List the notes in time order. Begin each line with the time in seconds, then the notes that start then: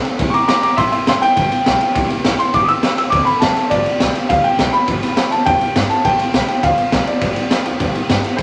0.05 C4 D4 A4, ride
0.19 C2 C3 G3 A#3 E4 G4, kick, ride
0.30 A#5 C#6 D6, muted upright bass stroke, ride
0.34 A#3 E4 G4
0.48 G2 G3 A#3 E4 G4 A#5 D6, snare, ride
0.62 G2 E4 G4 A#5 D6, ride
0.67 A#3
0.77 A2 C3 G3 A#3 E4 G4 E5 C6, kick, ride
0.92 E4 G4 E5 C6, muted upright bass stroke, ride
0.96 A#3
1.06 C3 G3 A#3 E4 G4 E5 C6, snare, ride
1.21 A#3 E4 G4 G5, muted upright bass stroke, snare, ride
1.36 G1 G2 D3 F3 B3 F4 G4, kick, ride
1.50 F3 B3 F4 G4, muted upright bass stroke, ride
1.65 B1 F3 B3 F4 G4, snare, ride
1.80 F3 B3 F4 G4, ride
1.94 C2 C3 G3 A#3 E4 G4, kick, ride
2.09 A#3 E4 G4, muted upright bass stroke, ride
2.24 A1 G3 A#3 E4 G4, snare, ride
2.38 A#3 E4 G4 C6, ride
2.54 G1 G2 D3 F3 B3 F4 G4 D6, kick, ride
2.64 G4 D#6
2.68 F3 B3 F4 E6, muted upright bass stroke, ride
2.82 D2 F3 B3 F4 G4, snare, ride
2.97 D2 F3 B3 F4 G4 E6, ride
3.10 D2 D3 F#3 C4 D4 D6, kick, ride
3.15 A4
3.25 D4 A4 B5, ride
3.30 C4
3.40 F#1 F#3 C4 D4 A5, kick, snare, ride
3.45 A4
3.56 C4 D4 A4, snare, ride
3.70 G1 G2 D3 F3 B3 F4 G4 D5, kick, ride
3.85 F3 B3 F4 G4, muted upright bass stroke, ride
3.99 B1 F3 B3 F4 G4, snare, ride
4.13 F3 B3 F4 G4, muted upright bass stroke, ride
4.29 D2 G2 D3 F3 B3 F4 G4 F5, kick, ride
4.44 F3 B3 F4 G4 G5, ride
4.58 B1 F3 B3 F4 G4, kick, snare, ride
4.73 F3 B3 F4 G4 B5, ride
4.87 G1 G2 D3 F3 B3 F4 G4, kick, ride
5.02 F3 B3 F4 G4, muted upright bass stroke, snare, ride
5.16 D2 F3 B3 F4 G4, snare, ride
5.31 D2 F3 B3 F4 G4 A5, ride
5.45 E2 G2 D3 F3 B3 F4 G4 G5, kick, ride
5.61 F3 B3 F4 G4, muted upright bass stroke, ride
5.75 G2 F3 B3 F4 G4, kick, snare, ride
5.90 F3 B3 F4 G4 A5, muted upright bass stroke, ride
6.04 G1 G2 D3 F3 B3 F4 G4 G5, kick, ride
6.19 F3 B3 F4 G4, muted upright bass stroke, ride
6.34 B1 F3 B3 F4 G4, snare, ride
6.48 F3 B3 F4 G4, muted upright bass stroke, ride
6.63 D2 G2 D3 F3 B3 F4 G4 F5, kick, ride
6.78 F3 B3 F4 G4, muted upright bass stroke, ride
6.92 B1 F3 B3 F4 G4, kick, snare, ride
7.07 F3 B3 F4 G4 D5, muted upright bass stroke, ride
7.21 G1 G2 D3 F3 B3 F4 G4, kick, ride
7.36 F3 B3 F4 G4, muted upright bass stroke, ride
7.50 D2 F3 B3 F4 G4, snare, ride
7.65 D2 F3 B3 F4 G4, ride
7.80 E2 G2 D3 F3 B3 F4 G4, kick, ride
7.94 F3 B3 F4 G4, muted upright bass stroke, ride
8.09 G2 F3 B3 F4, kick, snare, ride
8.14 G4
8.24 F3 B3 F4 G4, ride
8.37 C2 C3 G3 A#3 C5, kick, ride